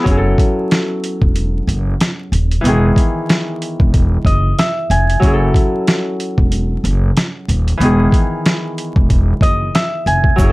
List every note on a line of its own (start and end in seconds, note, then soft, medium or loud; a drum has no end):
0.00 0.11 E3 medium
0.00 2.69 F#3 medium
0.00 2.63 B3 medium
0.00 0.10 G#4 medium
0.00 1.47 B4 medium
0.06 0.32 F#1 loud
0.06 2.96 C#4 medium
0.06 2.72 E4 medium
0.06 kick loud
0.06 closed hi-hat loud
0.11 0.16 G#4 medium
0.17 2.66 A4 medium
0.38 kick loud
0.38 closed hi-hat medium
0.71 snare loud
0.71 closed hi-hat medium
1.04 closed hi-hat medium
1.22 1.58 E1 medium
1.22 kick loud
1.36 closed hi-hat medium
1.67 1.93 F#1 medium
1.67 closed hi-hat medium
2.00 snare loud
2.00 closed hi-hat loud
2.32 2.58 D#1 medium
2.32 closed hi-hat medium
2.51 closed hi-hat medium
2.61 2.90 E1 loud
2.61 5.27 E3 medium
2.61 5.74 B3 medium
2.65 5.27 D#3 medium
2.65 5.21 G#4 medium
2.65 closed hi-hat loud
2.96 kick medium
2.96 closed hi-hat medium
3.29 snare loud
3.29 closed hi-hat medium
3.62 closed hi-hat medium
3.80 4.16 E1 medium
3.80 kick loud
3.94 kick loud
3.94 closed hi-hat medium
4.25 4.51 F#1 medium
4.25 4.65 D#5 medium
4.25 kick medium
4.25 closed hi-hat medium
4.59 6.31 E5 medium
4.59 snare loud
4.59 closed hi-hat loud
4.90 5.16 F1 medium
4.90 5.40 G#5 medium
4.90 closed hi-hat medium
5.10 closed hi-hat medium
5.20 5.48 F#1 loud
5.20 7.86 F#3 medium
5.20 8.12 C#4 medium
5.20 kick loud
5.20 closed hi-hat loud
5.25 7.89 E4 medium
5.25 5.32 G#4 medium
5.34 7.82 A4 medium
5.54 kick loud
5.54 closed hi-hat medium
5.87 snare loud
5.87 closed hi-hat medium
6.20 closed hi-hat medium
6.38 6.74 E1 medium
6.38 kick loud
6.52 closed hi-hat medium
6.84 7.09 F#1 medium
6.84 closed hi-hat medium
7.17 snare loud
7.17 closed hi-hat loud
7.48 7.74 D#1 medium
7.48 closed hi-hat medium
7.68 closed hi-hat medium
7.77 8.06 E1 loud
7.77 10.44 E3 medium
7.77 10.52 B3 medium
7.77 closed hi-hat loud
7.83 10.44 D#3 medium
7.83 10.37 G#4 medium
8.12 kick loud
8.12 closed hi-hat medium
8.46 snare loud
8.46 closed hi-hat medium
8.78 closed hi-hat medium
8.96 9.32 E1 medium
8.96 kick loud
9.10 kick loud
9.10 closed hi-hat medium
9.41 9.67 F#1 medium
9.41 9.81 D#5 medium
9.41 kick medium
9.41 closed hi-hat medium
9.75 10.52 E5 medium
9.75 snare loud
9.75 closed hi-hat loud
10.06 10.32 F1 medium
10.06 10.52 G#5 medium
10.06 closed hi-hat medium
10.24 kick medium
10.36 10.52 F#1 loud
10.36 10.52 F#3 medium
10.36 10.52 C#4 medium
10.36 kick loud
10.36 closed hi-hat loud
10.36 shaker medium
10.41 10.52 E4 medium
10.41 10.48 G#4 medium